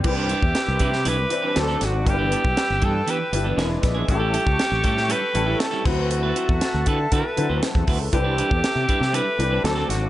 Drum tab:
CC |x---------------|----------------|--------------x-|----------------|
HH |--x-x-x-x-x-x-x-|x-x-x-x-x-x-x-x-|x-x-x-x-x-x-x---|x-x-x-x-x-x-x-o-|
SD |----o--o----o-o-|----o-------o-o-|----o--o----o-o-|----o-------o---|
BD |o--o--o---------|o--o--o-------o-|o--o--o-------o-|---o--o-o----oo-|

CC |----------------|
HH |x-x-x-x-x-x-x-x-|
SD |----o--o----o-o-|
BD |o--o--o---------|